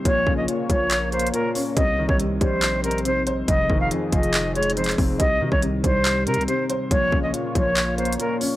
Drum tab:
HH |x-----------x-----x-----x-----x-x-x-x-----o-----|x-----------x-----x-----x-----x-x-x-x-----x-----|x-----------x-----x--x--x-----x-x-x-x-x-x-o-----|x-----------x-----x-----x-----x-x-x-x-----x-----|
CP |------------------------x-----------------------|------------------------x-----------------------|------------------------x--------------x--------|------------------------x-----------------------|
BD |o-----o-----------o-----------------------------|o--------o--------o-----------------------------|o-----o-----------o-----------------------o-----|o--------o--------o-----------------------------|

HH |x-----------x-----x-----x-----x-x-x-x-----o-----|
CP |------------------------x-----------------------|
BD |o-----o-----------o-----------------------------|